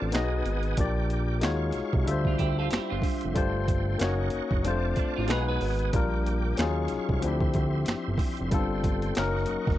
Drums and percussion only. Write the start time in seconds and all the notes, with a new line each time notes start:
0.12 finger snap, snare, closed hi-hat
0.46 closed hi-hat
0.63 closed hi-hat
0.77 kick, closed hi-hat
1.10 closed hi-hat
1.41 finger snap, snare, closed hi-hat
1.72 snare, closed hi-hat
1.93 kick
2.07 closed hi-hat
2.25 kick
2.39 kick, closed hi-hat
2.71 finger snap, snare, closed hi-hat
3.02 kick, open hi-hat
3.21 closed hi-hat
3.36 kick, closed hi-hat
3.68 kick, closed hi-hat
3.99 finger snap, snare, closed hi-hat
4.30 closed hi-hat
4.51 kick
4.65 closed hi-hat
4.96 kick, closed hi-hat
5.28 finger snap, snare, closed hi-hat
5.61 open hi-hat
5.79 closed hi-hat
5.93 kick, closed hi-hat
6.26 closed hi-hat
6.57 finger snap, snare, closed hi-hat
6.88 snare, closed hi-hat
7.09 kick
7.22 closed hi-hat
7.41 kick
7.54 kick, closed hi-hat
7.86 finger snap, snare, closed hi-hat
8.18 kick, open hi-hat
8.37 closed hi-hat
8.51 kick, closed hi-hat
8.84 kick, closed hi-hat
9.02 closed hi-hat
9.15 finger snap, snare, closed hi-hat
9.37 snare
9.46 closed hi-hat
9.67 kick, snare